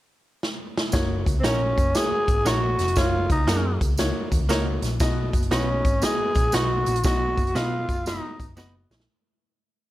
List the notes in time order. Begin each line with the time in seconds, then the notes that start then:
0.43 snare
0.78 snare
0.92 F#1 A#3 D#4 F#4 C#5, kick, snare, closed hi-hat, tambourine
1.26 C#2, kick, closed hi-hat, tambourine
1.40 A#1 A#3 C4
1.44 A#3 C#4 D#4 F#4 A#4 C#5, snare, closed hi-hat, tambourine
1.77 F#1, kick, closed hi-hat, tambourine
1.95 A#3 D#4 F#4 G#4 C#5, snare, closed hi-hat, tambourine
2.12 muted picked electric bass stroke
2.28 G#1, kick, closed hi-hat, tambourine
2.45 A#1 A#3 D#4 F#4 A#4 C#5, snare, closed hi-hat, tambourine
2.79 F1, snare, closed hi-hat, tambourine
2.88 closed hi-hat
2.96 F#1 A#3 D#4 F4 F#4 C#5, kick, snare, closed hi-hat, tambourine
3.30 C#2 D#4, kick, closed hi-hat, tambourine
3.47 F#2 A#3 D#4 F#4 G#4 A#4, snare, closed hi-hat, tambourine
3.81 C#2, kick, closed hi-hat, tambourine
3.97 A#3 D#4 F#4 C#5, snare, closed hi-hat, tambourine
4.31 D#2, kick, closed hi-hat, tambourine
4.41 C#2
4.49 A#3 D#4 F#4 A#4 C#5, snare, closed hi-hat, tambourine
4.82 A#1, snare, closed hi-hat, tambourine
5.00 B1 B2 B3 D#4 F#4 D#5, kick, snare, closed hi-hat, tambourine
5.33 F#1, kick, closed hi-hat, tambourine
5.42 closed hi-hat
5.51 B1 B3 C#4 D#4 F#4 B4 D#5, snare, closed hi-hat, tambourine
5.85 G#1, kick, closed hi-hat, tambourine
6.02 B3 D#4 F#4 G#4 D#5, snare, closed hi-hat, tambourine
6.20 muted picked electric bass stroke
6.35 A#1, kick, closed hi-hat, tambourine
6.52 B1 B3 D#4 F#4 B4 D#5, snare, closed hi-hat, tambourine
6.86 A#1, closed hi-hat, tambourine
6.96 closed hi-hat
7.03 B1 B2 B3 D#4 F#4 D#5, kick, snare, closed hi-hat, tambourine
7.38 F#1, kick, closed hi-hat, tambourine
7.47 closed hi-hat
7.55 B2 F#3 B3 D#4 F4 F#4 B4 D#5, snare, closed hi-hat, tambourine
7.89 F#1, kick, closed hi-hat, tambourine
8.06 B3 D#4 F#4 D#5, snare, closed hi-hat, tambourine
8.40 G#1, kick, closed hi-hat, tambourine
8.49 F#1
8.57 B3 D#4 F#4 B4 D#5, snare, tambourine
8.91 A#1, snare, tambourine
9.00 snare